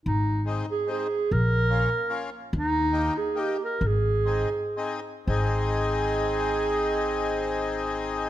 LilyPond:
<<
  \new Staff \with { instrumentName = "Clarinet" } { \time 3/4 \key aes \major \tempo 4 = 133 ees'4 r8 aes'8 aes'4 | bes'2~ bes'8 r8 | ees'4. aes'8 g'8 bes'8 | aes'2~ aes'8 r8 |
aes'2.~ | aes'2. | }
  \new Staff \with { instrumentName = "Accordion" } { \time 3/4 \key aes \major r4 <aes c' ees'>8 r8 <aes c' ees'>8 r8 | r4 <bes des' f'>8 r8 <bes des' f'>8 r8 | r4 <bes ees' g'>8 r8 <bes ees' g'>8 r8 | r4 <c' ees' aes'>8 r8 <c' ees' aes'>8 r8 |
<c' ees' aes'>2.~ | <c' ees' aes'>2. | }
  \new Staff \with { instrumentName = "Upright bass" } { \clef bass \time 3/4 \key aes \major aes,,2 r4 | bes,,2 r4 | ees,2 r4 | aes,,2 r4 |
aes,,2.~ | aes,,2. | }
>>